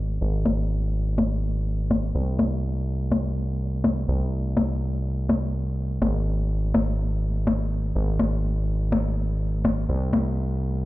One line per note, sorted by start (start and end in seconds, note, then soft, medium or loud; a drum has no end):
0.00 0.19 G#1 medium
0.21 2.12 G#1 medium
0.45 percussion blips medium
1.18 percussion blips medium
1.91 percussion blips medium
2.15 4.06 C2 medium
2.39 percussion blips medium
3.12 percussion blips medium
3.84 percussion blips medium
4.08 5.99 C2 medium
4.57 percussion blips medium
5.29 percussion blips medium
6.02 7.93 G#1 medium
6.02 percussion blips medium
6.74 percussion blips medium
7.47 percussion blips medium
7.95 9.87 G#1 medium
8.20 percussion blips medium
8.92 percussion blips medium
9.65 percussion blips medium
9.89 10.85 C2 medium
10.13 percussion blips medium